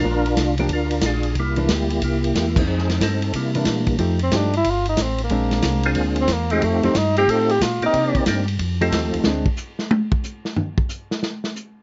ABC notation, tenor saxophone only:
X:1
M:4/4
L:1/8
Q:"Swing" 1/4=182
K:Fmix
V:1 name="Tenor saxophone"
z8 | z8 | z8 | z C D =E F _E C B,- |
B,4 z C B, _A, | A, C E G A G F E- | E2 z6 | z8 |
z8 |]